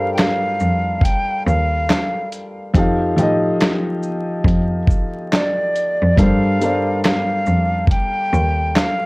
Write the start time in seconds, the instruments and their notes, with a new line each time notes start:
Already playing: cello G2, upright piano G3 D4 A4 A#4 C5 F5, flute F5
0.14 flute G5, closed hi-hat
0.18 flute F5, snare, clap
0.60 cello F2, shaker
1.01 flute G5, kick, closed hi-hat
1.47 cello D#2, flute F5, shaker
1.90 snare, clap, closed hi-hat
2.32 closed hi-hat, shaker
2.73 cello F2, upright piano F3 D#4 G4 A4, kick, closed hi-hat
2.79 upright piano F5
3.16 cello A2, upright piano F3 D#4 G4, closed hi-hat, shaker
3.20 upright piano A4 D#5
3.60 snare, clap, closed hi-hat
4.03 shaker
4.44 cello F2, kick, closed hi-hat
4.87 kick, shaker
5.33 flute D5, snare, clap, closed hi-hat
5.76 closed hi-hat, shaker
6.02 cello F2
6.16 cello G2, upright piano G3 D4 A4 A#4, flute F5, kick, closed hi-hat
6.21 upright piano C5 F5
6.59 upright piano G3 D4 A4 A#4, closed hi-hat, shaker
6.63 upright piano C5 D5
7.04 flute F5, snare, clap, closed hi-hat
7.46 cello F2, shaker
7.87 flute G5, kick, closed hi-hat
8.33 cello D#2, shaker
8.76 flute F5, snare, clap, closed hi-hat